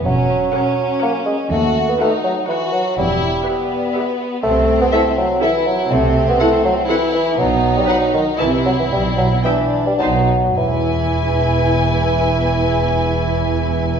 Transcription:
<<
  \new Staff \with { instrumentName = "Violin section" } { \time 3/4 \key b \phrygian \tempo 4 = 122 r4 fis''4 fis''4 | r4 fis''4 fis''4 | r4 e''4 e''4 | r4 e''4 e''4 |
r4 fis''4 fis''4 | r4 fis''4 a''4 | r4 g''4 a''4 | gis''2.~ |
gis''2. | }
  \new Staff \with { instrumentName = "Viola section" } { \time 3/4 \key b \phrygian r4 <ais' cis''>4 <ais' cis''>4 | r4 <fis' b'>4 <fis' b'>4 | r4 <g' b'>4 <g' b'>4 | r4 <e' a'>4 <e' a'>4 |
r4 <e' a'>4 <e' a'>4 | r4 <dis' b'>4 <e' e''>4 | r4 <e' e''>4 <dis' c''>4 | e'2.~ |
e'2. | }
  \new Staff \with { instrumentName = "Violin section" } { \time 3/4 \key b \phrygian cis'4 cis'2 | fis'4 dis'4 fis'4 | e'4 b2 | c'2 e'4 |
c'2 e'4 | dis'2 e'4~ | e'4 d'4 dis'8 r8 | b'2.~ |
b'2. | }
  \new Staff \with { instrumentName = "Bassoon" } { \clef bass \time 3/4 \key b \phrygian fis2 ais8 gis8 | a8. b16 a8 fis8 e8 fis8 | g2 r4 | a8. b16 a8 fis8 e8 fis8 |
a8. b16 a8 fis8 e8 e8 | fis8. g16 fis8 dis8 e8 fis16 e16 | g8 fis8 e8. g16 fis4 | e2.~ |
e2. | }
  \new Staff \with { instrumentName = "Cello section" } { \clef bass \time 3/4 \key b \phrygian e,4 r2 | dis,4 r2 | e,4 r2 | c4 r2 |
c4 r2 | b,4 r4 c4 | b,4 r4 b,4 | e,2.~ |
e,2. | }
  \new Staff \with { instrumentName = "Double bass section" } { \clef bass \time 3/4 \key b \phrygian e,,4 r2 | dis,4 r2 | e,,4 r2 | c,4 r2 |
c,4 r2 | b,,4 r4 c,4 | b,,4 r4 b,,4 | e,,2.~ |
e,,2. | }
>>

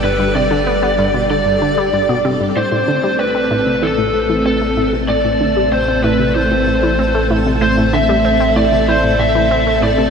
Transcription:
<<
  \new Staff \with { instrumentName = "Lead electric guitar" } { \time 4/4 \key a \minor \tempo 4 = 95 b'8 d''4. d''4. r8 | c''4 b'4 a'4 a'8. r16 | d''4 c''8 b'8 c''4. r8 | c''8 e''4 d''8 c''8 e''4 d''8 | }
  \new Staff \with { instrumentName = "String machine" } { \time 4/4 \key a \minor <g g' a' d''>1 | <a c' a'>1~ | <a c' a'>1~ | <a c' a'>1 | }
  \new Staff \with { instrumentName = "Synth texture" } { \time 4/4 \key a \minor <d' d''>1 | <a a'>1~ | <a a'>1~ | <a a'>1 | }
  \new Staff \with { instrumentName = "Synth arpeggio sound" } { \clef bass \time 4/4 \key a \minor g,16 g,16 c16 d16 b16 b16 g,16 b,16 d16 g,16 d16 g16 g,16 b,16 c16 g,16 | a,16 a,16 d16 g16 c'16 c'16 a,16 c16 e16 a,16 a,16 e16 c'16 a16 a,16 c16 | a,16 a,16 d16 g16 c'16 c'16 a,16 c16 e16 a,16 a,16 e16 c'16 a16 a,16 c16 | a,16 a,16 d16 g16 c'16 c'16 a,16 c16 e16 a,16 a,16 e16 c'16 a16 a,16 c16 | }
  \new Staff \with { instrumentName = "Analog synth bass" } { \clef bass \time 4/4 \key a \minor g,,1 | a,,1~ | a,,1~ | a,,1 | }
>>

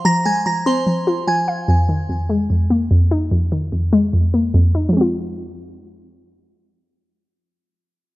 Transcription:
<<
  \new Staff \with { instrumentName = "Synth bell" } { \time 4/4 \key f \minor \tempo 4 = 147 <bes'' bes'''>8 <aes'' aes'''>8 <bes'' bes'''>8 <c'' c'''>4. <aes'' aes'''>4 | r1 | r1 | r1 |
r1 | }
  \new Staff \with { instrumentName = "Synth pluck" } { \clef bass \time 4/4 \key f \minor <f f' f''>8 aes8 f8 c'8 f8 f'8 f8 f''8 | f,8 ees8 f,8 aes8 f,8 bes8 f,8 ees'8 | f,8 ees8 f,8 aes8 f,8 bes8 f,8 ees'8 | <f aes c' f'>1~ |
<f aes c' f'>1 | }
>>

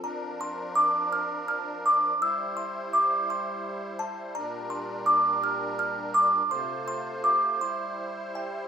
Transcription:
<<
  \new Staff \with { instrumentName = "Music box" } { \time 6/8 \key bes \lydian \tempo 4. = 55 bes''8 c'''8 d'''8 f'''8 f'''8 d'''8 | e'''8 c'''8 d'''8 c'''4 a''8 | bes''8 c'''8 d'''8 f'''8 f'''8 d'''8 | c'''8 c'''8 d'''8 c'''4 g''8 | }
  \new Staff \with { instrumentName = "Accordion" } { \time 6/8 \key bes \lydian << { bes'2. | c''2. | bes'2. | c''2. | } \\ { d'2. | e'2. | <bes, d'>2. | <c f'>4. e'4. | } >> }
  \new Staff \with { instrumentName = "Accordion" } { \clef bass \time 6/8 \key bes \lydian f2. | g2.~ | g2. | a4. g4. | }
>>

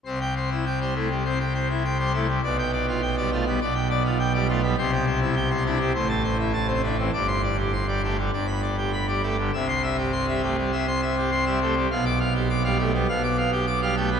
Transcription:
<<
  \new Staff \with { instrumentName = "Pipe organ" } { \time 4/4 \key c \major \tempo 4 = 102 c''16 g''16 c''16 e'16 g''16 c''16 e'16 r16 c''16 g''16 c''16 e'16 g''16 c''16 e'16 r16 | d''16 g''16 d''16 f'16 g''16 d''16 f'16 b16 d''16 g''16 d''16 f'16 g''16 d''16 f'16 b16 | c''16 g''16 c''16 e'16 g''16 c''16 e'16 g16 c''16 a''16 c''16 e'16 a''16 c''16 e'16 e16 | d''16 c'''16 d''16 g'16 c'''16 d''16 g'16 d16 d''16 b''16 d''16 g'16 b''16 d''16 g'16 d16 |
e''16 c'''16 e''16 g'16 c'''16 e''16 g'16 g16 e''16 c'''16 e''16 g'16 c'''16 e''16 g'16 r16 | f''16 d'''16 f''16 g'16 d'''16 f''16 g'16 b16 f''16 d'''16 f''16 g'16 d'''16 f''16 g'16 b16 | }
  \new Staff \with { instrumentName = "Pipe organ" } { \clef bass \time 4/4 \key c \major << { c4~ c16 g16 a16 g16 c'16 r4 g16 a16 g16 | b,4~ b,16 g16 a16 g16 b,4~ b,16 g16 a16 g16 | c4~ c16 c'16 d'16 c'16 a,4~ a,16 c'16 d'16 c'16 | g,4~ g,16 g16 a16 g16 g,4~ g,16 g16 a16 g16 |
c4~ c16 g16 a16 r16 c'16 r4 g16 a16 g16 | b,4~ b,16 g16 a16 g16 b,4~ b,16 g16 a16 g16 | } \\ { c,1 | b,,2 b,,2 | c,2 a,,2 | g,,2 g,,2 |
c,1 | b,,2 b,,2 | } >> }
>>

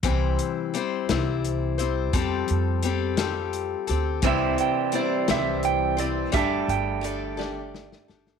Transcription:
<<
  \new Staff \with { instrumentName = "Electric slide guitar" } { \time 6/8 \key c \major \tempo 4. = 57 r2. | r2. | e''8 g''8 d''8 e''8 g''8 d''8 | e''8 g''8 d''8 d''4 r8 | }
  \new Staff \with { instrumentName = "Steel-string acoustic guitar" } { \time 6/8 \key c \major <c e g c' e' c''>4 <g c' e' c''>8 <c e g c' e' c''>4 <g c' e' c''>8 | <f g c' g' a'>4 <g c' g' a'>8 <f g c' g' a'>4 <c' g' a'>8 | <c e g c' e' c''>4 <g c' e' c''>8 <c e g c' e' c''>4 <g c' e' c''>8 | <g d' g' a'>4 <g d' g' a'>8 <g d' g' a'>4 <d' g' a'>8 | }
  \new Staff \with { instrumentName = "Clean electric guitar" } { \time 6/8 \key c \major r2. | r2. | <c e g e' g'>2. | <g a d' g'>2. | }
  \new Staff \with { instrumentName = "Upright bass" } { \clef bass \time 6/8 \key c \major c,8 r4 c,4. | f,8 f,2 d,8 | c,8 r4 c,4. | g,,8 g,,2 g,,8 | }
  \new DrumStaff \with { instrumentName = "Drums" } \drummode { \time 6/8 <hh bd>8 hh8 hh8 <hh sn>8 hh8 hh8 | <hh bd>8 hh8 hh8 <hh sn>8 hh8 hh8 | <hh bd>8 hh8 hh8 <hh sn>8 hh8 hh8 | <hh bd>8 hh8 hh8 sn8 sn16 sn16 sn16 sn16 | }
>>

